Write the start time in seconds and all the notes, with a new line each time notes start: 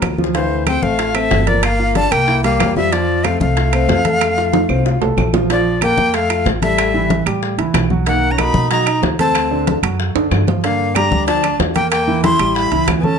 Already playing: A#3 A#4
0.02 D2, low bongo, high conga, high timbale, low timbale, claves
0.18 F3 F4, high conga
0.24 low bongo
0.34 D3 E3 C5 F5, high bongo, high conga, high timbale
0.51 high conga
0.66 C4 C5 G5, high bongo, high conga, high timbale, low timbale, claves
0.82 A1 A3 F5, high bongo, high conga
0.99 F4 F5, high bongo, high conga, high timbale
1.15 A3 C4 C5 E5, high bongo, high conga, high timbale, claves
1.31 G1, high bongo, low bongo, high conga, low timbale
1.47 F3 A#3 A#4 D5, high bongo, high conga, high timbale
1.63 A#3 F5, high bongo, high timbale, claves
1.79 F4 F5, high conga
1.95 D4 A5, high bongo, high conga, high timbale, low timbale
2.11 C2 A#3 A#4 G5, high bongo, high conga, high timbale, claves
2.28 E4 E5, high bongo, high conga
2.43 G3 A#3 G4 F5, high bongo, high conga, high timbale
2.60 F2, high bongo, low bongo, high conga, high timbale, low timbale, claves
2.76 F3 G3 F4 E5, high bongo, high conga
2.92 F3 F4 D5, high bongo, high conga, high timbale
3.09 high conga
3.24 A3 C4 C5 F5, high bongo, high conga, high timbale, low timbale, claves
3.40 C2 A3 F5, high bongo, high conga
3.57 F4 F5, high bongo, high conga, high timbale
3.73 C4 C5, high bongo, high conga, high timbale, claves
3.88 F2, high bongo, low bongo, high conga, low timbale
4.05 A3 A4, high conga, high timbale
4.21 high bongo, high conga, high timbale, claves
4.37 F4 F5, high bongo, high conga
4.53 low bongo, high conga, high timbale
4.69 C2 C4 C5, low bongo, high conga, claves
4.85 F4 F5, low bongo, high conga
5.01 C2 A3 A4, low bongo, high conga, low timbale
5.17 A#1, low bongo, high conga, low timbale, claves
5.33 F3 F4, low bongo, high conga, low timbale
5.50 F3 F4 D5, high bongo, high conga, high timbale
5.65 high conga
5.81 A#3 A#4 G5, high bongo, high conga, high timbale, low timbale, claves
5.97 F2, high bongo, high conga
6.14 A3 A4 F5, high bongo, high conga, high timbale
6.30 F4 F5, high bongo, high conga, high timbale, claves
6.46 A1, high bongo, low bongo, high conga, low timbale
6.62 G3 A3 A4 E5, high bongo, high conga, high timbale
6.78 high bongo, high conga, high timbale, claves
6.94 E3 E4, high conga
7.10 high bongo, high conga, high timbale, low timbale
7.26 A2 G3 G4, high bongo, high conga, high timbale, claves
7.42 high bongo, high conga
7.58 C#2 E3 E4, high bongo, high conga, high timbale
7.74 B1, high bongo, low bongo, high conga, high timbale, low timbale, claves
7.90 F#3 F#4, high bongo, high conga
8.06 D#3 A#3 D#4 F#5, high bongo, high conga, high timbale
8.22 high conga
8.31 C#4 A#5
8.38 A#3 D#4 F#4 B5, high bongo, high conga, high timbale, low timbale, claves
8.54 B2, high bongo, high conga
8.71 F#3 D#4 F#4 A#5, high bongo, high conga, high timbale
8.86 D#4 D#5, high conga, high timbale, claves
9.02 D2, high bongo, low bongo, high conga, low timbale
9.19 A3 C4 A4 A5, high bongo, high conga, high timbale
9.35 high bongo, high conga, high timbale, claves
9.51 D3 D4, high conga
9.67 high bongo, high conga, high timbale, low timbale
9.83 F#2 F#3 F#4, high bongo, high conga, high timbale, claves
10.00 high bongo, high conga
10.15 F#2 D3 D4, high bongo, high conga, high timbale
10.31 G2, high bongo, low bongo, high conga, low timbale, claves
10.47 F3 F4, high bongo, high conga, low timbale
10.64 D3 A#3 D4 F5, high bongo, high timbale
10.80 high conga
10.95 G3 D4 G4 A#5, high bongo, high conga, high timbale, low timbale, claves
11.11 D2, high bongo, high conga
11.27 F3 D4 F4 A5, high bongo, high conga, high timbale
11.43 D4 D5, high bongo, high conga, high timbale, claves
11.59 E2, high bongo, low bongo, high conga, low timbale
11.75 A#3 A#4 G5, high bongo, high conga, high timbale
11.91 A#3 G5, high bongo, high conga, high timbale, claves
12.07 E3 E4, high conga
12.23 E4 C6, high bongo, high conga, high timbale, low timbale
12.39 A1 G3 G4, high conga, high timbale, claves
12.55 E4 B5, high bongo, high conga
12.71 C#2 E3 E4, high conga, high timbale
12.88 D2, high bongo, low bongo, high conga, high timbale, low timbale, claves
13.00 A3 B3 C#4 A4 G#5 A5, high conga
13.04 high bongo